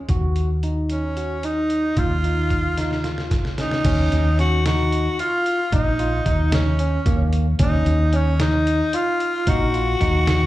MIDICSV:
0, 0, Header, 1, 5, 480
1, 0, Start_track
1, 0, Key_signature, -6, "minor"
1, 0, Tempo, 536193
1, 82, Time_signature, 7, 3, 24, 8
1, 9368, End_track
2, 0, Start_track
2, 0, Title_t, "Tenor saxophone"
2, 0, Program_c, 0, 66
2, 819, Note_on_c, 0, 61, 60
2, 1302, Note_on_c, 0, 63, 72
2, 1315, Note_off_c, 0, 61, 0
2, 1779, Note_on_c, 0, 65, 89
2, 1792, Note_off_c, 0, 63, 0
2, 2976, Note_off_c, 0, 65, 0
2, 3229, Note_on_c, 0, 63, 85
2, 3904, Note_off_c, 0, 63, 0
2, 3939, Note_on_c, 0, 66, 89
2, 4158, Note_off_c, 0, 66, 0
2, 4178, Note_on_c, 0, 66, 86
2, 4650, Note_on_c, 0, 65, 91
2, 4663, Note_off_c, 0, 66, 0
2, 5129, Note_off_c, 0, 65, 0
2, 5143, Note_on_c, 0, 63, 86
2, 5820, Note_off_c, 0, 63, 0
2, 5855, Note_on_c, 0, 61, 71
2, 6535, Note_off_c, 0, 61, 0
2, 6825, Note_on_c, 0, 63, 81
2, 7303, Note_on_c, 0, 61, 73
2, 7317, Note_off_c, 0, 63, 0
2, 7532, Note_on_c, 0, 63, 76
2, 7546, Note_off_c, 0, 61, 0
2, 8018, Note_on_c, 0, 65, 83
2, 8031, Note_off_c, 0, 63, 0
2, 8501, Note_on_c, 0, 66, 92
2, 8515, Note_off_c, 0, 65, 0
2, 9368, Note_off_c, 0, 66, 0
2, 9368, End_track
3, 0, Start_track
3, 0, Title_t, "Tine electric piano"
3, 0, Program_c, 1, 4
3, 90, Note_on_c, 1, 66, 64
3, 442, Note_off_c, 1, 66, 0
3, 568, Note_on_c, 1, 63, 54
3, 921, Note_off_c, 1, 63, 0
3, 1048, Note_on_c, 1, 66, 52
3, 1225, Note_off_c, 1, 66, 0
3, 1291, Note_on_c, 1, 63, 63
3, 1644, Note_off_c, 1, 63, 0
3, 1767, Note_on_c, 1, 65, 68
3, 1944, Note_off_c, 1, 65, 0
3, 2012, Note_on_c, 1, 63, 54
3, 2365, Note_off_c, 1, 63, 0
3, 2489, Note_on_c, 1, 63, 64
3, 2666, Note_off_c, 1, 63, 0
3, 2732, Note_on_c, 1, 65, 54
3, 3085, Note_off_c, 1, 65, 0
3, 3210, Note_on_c, 1, 61, 59
3, 3387, Note_off_c, 1, 61, 0
3, 3452, Note_on_c, 1, 61, 83
3, 3805, Note_off_c, 1, 61, 0
3, 3931, Note_on_c, 1, 61, 64
3, 4107, Note_off_c, 1, 61, 0
3, 4176, Note_on_c, 1, 63, 71
3, 4528, Note_off_c, 1, 63, 0
3, 4657, Note_on_c, 1, 65, 73
3, 5007, Note_off_c, 1, 65, 0
3, 5130, Note_on_c, 1, 63, 79
3, 5307, Note_off_c, 1, 63, 0
3, 5367, Note_on_c, 1, 65, 65
3, 5545, Note_off_c, 1, 65, 0
3, 5607, Note_on_c, 1, 63, 65
3, 5961, Note_off_c, 1, 63, 0
3, 6087, Note_on_c, 1, 61, 64
3, 6264, Note_off_c, 1, 61, 0
3, 6326, Note_on_c, 1, 58, 73
3, 6679, Note_off_c, 1, 58, 0
3, 6801, Note_on_c, 1, 61, 82
3, 7156, Note_off_c, 1, 61, 0
3, 7284, Note_on_c, 1, 61, 72
3, 7461, Note_off_c, 1, 61, 0
3, 7526, Note_on_c, 1, 63, 74
3, 7878, Note_off_c, 1, 63, 0
3, 8004, Note_on_c, 1, 65, 77
3, 8356, Note_off_c, 1, 65, 0
3, 8485, Note_on_c, 1, 63, 82
3, 8660, Note_off_c, 1, 63, 0
3, 8722, Note_on_c, 1, 65, 68
3, 8898, Note_off_c, 1, 65, 0
3, 8961, Note_on_c, 1, 63, 68
3, 9313, Note_off_c, 1, 63, 0
3, 9368, End_track
4, 0, Start_track
4, 0, Title_t, "Fretless electric bass"
4, 0, Program_c, 2, 35
4, 79, Note_on_c, 2, 39, 58
4, 1732, Note_off_c, 2, 39, 0
4, 1761, Note_on_c, 2, 39, 58
4, 3413, Note_off_c, 2, 39, 0
4, 3443, Note_on_c, 2, 39, 86
4, 3659, Note_off_c, 2, 39, 0
4, 3691, Note_on_c, 2, 39, 79
4, 4542, Note_off_c, 2, 39, 0
4, 5124, Note_on_c, 2, 34, 81
4, 5552, Note_off_c, 2, 34, 0
4, 5602, Note_on_c, 2, 39, 73
4, 6242, Note_off_c, 2, 39, 0
4, 6320, Note_on_c, 2, 39, 76
4, 6748, Note_off_c, 2, 39, 0
4, 6798, Note_on_c, 2, 39, 86
4, 7014, Note_off_c, 2, 39, 0
4, 7040, Note_on_c, 2, 39, 78
4, 7891, Note_off_c, 2, 39, 0
4, 8479, Note_on_c, 2, 34, 80
4, 8904, Note_off_c, 2, 34, 0
4, 8960, Note_on_c, 2, 39, 76
4, 9368, Note_off_c, 2, 39, 0
4, 9368, End_track
5, 0, Start_track
5, 0, Title_t, "Drums"
5, 77, Note_on_c, 9, 42, 64
5, 78, Note_on_c, 9, 36, 90
5, 166, Note_off_c, 9, 42, 0
5, 168, Note_off_c, 9, 36, 0
5, 320, Note_on_c, 9, 42, 46
5, 410, Note_off_c, 9, 42, 0
5, 564, Note_on_c, 9, 42, 41
5, 653, Note_off_c, 9, 42, 0
5, 802, Note_on_c, 9, 42, 57
5, 891, Note_off_c, 9, 42, 0
5, 1045, Note_on_c, 9, 42, 40
5, 1135, Note_off_c, 9, 42, 0
5, 1283, Note_on_c, 9, 42, 58
5, 1372, Note_off_c, 9, 42, 0
5, 1521, Note_on_c, 9, 42, 45
5, 1610, Note_off_c, 9, 42, 0
5, 1761, Note_on_c, 9, 36, 82
5, 1762, Note_on_c, 9, 42, 59
5, 1850, Note_off_c, 9, 36, 0
5, 1852, Note_off_c, 9, 42, 0
5, 2006, Note_on_c, 9, 42, 45
5, 2095, Note_off_c, 9, 42, 0
5, 2242, Note_on_c, 9, 36, 50
5, 2242, Note_on_c, 9, 42, 43
5, 2331, Note_off_c, 9, 36, 0
5, 2332, Note_off_c, 9, 42, 0
5, 2484, Note_on_c, 9, 38, 40
5, 2484, Note_on_c, 9, 42, 66
5, 2574, Note_off_c, 9, 38, 0
5, 2574, Note_off_c, 9, 42, 0
5, 2605, Note_on_c, 9, 38, 40
5, 2695, Note_off_c, 9, 38, 0
5, 2722, Note_on_c, 9, 38, 47
5, 2722, Note_on_c, 9, 42, 44
5, 2812, Note_off_c, 9, 38, 0
5, 2812, Note_off_c, 9, 42, 0
5, 2846, Note_on_c, 9, 38, 48
5, 2935, Note_off_c, 9, 38, 0
5, 2964, Note_on_c, 9, 36, 80
5, 2966, Note_on_c, 9, 38, 57
5, 2966, Note_on_c, 9, 42, 61
5, 3053, Note_off_c, 9, 36, 0
5, 3056, Note_off_c, 9, 38, 0
5, 3056, Note_off_c, 9, 42, 0
5, 3088, Note_on_c, 9, 38, 50
5, 3177, Note_off_c, 9, 38, 0
5, 3205, Note_on_c, 9, 38, 65
5, 3205, Note_on_c, 9, 42, 49
5, 3294, Note_off_c, 9, 38, 0
5, 3294, Note_off_c, 9, 42, 0
5, 3325, Note_on_c, 9, 38, 58
5, 3414, Note_off_c, 9, 38, 0
5, 3442, Note_on_c, 9, 42, 76
5, 3442, Note_on_c, 9, 49, 89
5, 3444, Note_on_c, 9, 36, 106
5, 3532, Note_off_c, 9, 42, 0
5, 3532, Note_off_c, 9, 49, 0
5, 3534, Note_off_c, 9, 36, 0
5, 3688, Note_on_c, 9, 42, 52
5, 3778, Note_off_c, 9, 42, 0
5, 3929, Note_on_c, 9, 38, 28
5, 3929, Note_on_c, 9, 42, 51
5, 4019, Note_off_c, 9, 38, 0
5, 4019, Note_off_c, 9, 42, 0
5, 4169, Note_on_c, 9, 38, 92
5, 4169, Note_on_c, 9, 42, 69
5, 4258, Note_off_c, 9, 38, 0
5, 4258, Note_off_c, 9, 42, 0
5, 4408, Note_on_c, 9, 42, 51
5, 4498, Note_off_c, 9, 42, 0
5, 4649, Note_on_c, 9, 42, 67
5, 4738, Note_off_c, 9, 42, 0
5, 4887, Note_on_c, 9, 42, 48
5, 4977, Note_off_c, 9, 42, 0
5, 5124, Note_on_c, 9, 36, 104
5, 5125, Note_on_c, 9, 42, 74
5, 5214, Note_off_c, 9, 36, 0
5, 5214, Note_off_c, 9, 42, 0
5, 5364, Note_on_c, 9, 42, 53
5, 5453, Note_off_c, 9, 42, 0
5, 5603, Note_on_c, 9, 36, 59
5, 5603, Note_on_c, 9, 42, 51
5, 5692, Note_off_c, 9, 36, 0
5, 5692, Note_off_c, 9, 42, 0
5, 5839, Note_on_c, 9, 38, 98
5, 5839, Note_on_c, 9, 42, 72
5, 5929, Note_off_c, 9, 38, 0
5, 5929, Note_off_c, 9, 42, 0
5, 6078, Note_on_c, 9, 42, 56
5, 6167, Note_off_c, 9, 42, 0
5, 6319, Note_on_c, 9, 36, 92
5, 6319, Note_on_c, 9, 42, 74
5, 6408, Note_off_c, 9, 36, 0
5, 6408, Note_off_c, 9, 42, 0
5, 6559, Note_on_c, 9, 42, 54
5, 6648, Note_off_c, 9, 42, 0
5, 6795, Note_on_c, 9, 42, 81
5, 6798, Note_on_c, 9, 36, 94
5, 6884, Note_off_c, 9, 42, 0
5, 6887, Note_off_c, 9, 36, 0
5, 7037, Note_on_c, 9, 42, 57
5, 7127, Note_off_c, 9, 42, 0
5, 7274, Note_on_c, 9, 42, 53
5, 7364, Note_off_c, 9, 42, 0
5, 7517, Note_on_c, 9, 38, 95
5, 7517, Note_on_c, 9, 42, 72
5, 7606, Note_off_c, 9, 38, 0
5, 7606, Note_off_c, 9, 42, 0
5, 7761, Note_on_c, 9, 42, 60
5, 7850, Note_off_c, 9, 42, 0
5, 7995, Note_on_c, 9, 42, 78
5, 8085, Note_off_c, 9, 42, 0
5, 8239, Note_on_c, 9, 42, 51
5, 8328, Note_off_c, 9, 42, 0
5, 8476, Note_on_c, 9, 42, 77
5, 8478, Note_on_c, 9, 36, 100
5, 8566, Note_off_c, 9, 42, 0
5, 8568, Note_off_c, 9, 36, 0
5, 8720, Note_on_c, 9, 42, 53
5, 8809, Note_off_c, 9, 42, 0
5, 8958, Note_on_c, 9, 36, 55
5, 8960, Note_on_c, 9, 38, 28
5, 8960, Note_on_c, 9, 42, 48
5, 9047, Note_off_c, 9, 36, 0
5, 9050, Note_off_c, 9, 38, 0
5, 9050, Note_off_c, 9, 42, 0
5, 9197, Note_on_c, 9, 38, 95
5, 9197, Note_on_c, 9, 42, 67
5, 9287, Note_off_c, 9, 38, 0
5, 9287, Note_off_c, 9, 42, 0
5, 9368, End_track
0, 0, End_of_file